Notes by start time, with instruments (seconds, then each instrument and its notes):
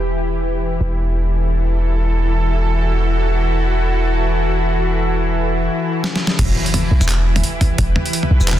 Already playing: 808-style bass E1, synth drone E3 E4 G4 B4
0.61 synth drone A4
0.81 808-style bass E1
1.97 synth drone F#4
6.04 snare
6.16 snare
6.27 snare
6.39 808-style bass E1, kick, closed hi-hat, mid tom, crash, impact
6.66 synth drone B4, closed hi-hat
6.73 synth drone G4, closed hi-hat, mid tom
6.91 808-style bass B1
7.01 808-style bass E1, mid tom, shaker
7.09 clap, closed hi-hat
7.36 closed hi-hat, mid tom
7.44 closed hi-hat
7.61 kick, closed hi-hat, mid tom
7.78 808-style bass E1, kick, closed hi-hat
7.96 mid tom
8.06 closed hi-hat
8.13 closed hi-hat
8.23 mid tom
8.31 808-style bass B1
8.40 808-style bass E1, shaker
8.48 clap, closed hi-hat
8.53 mid tom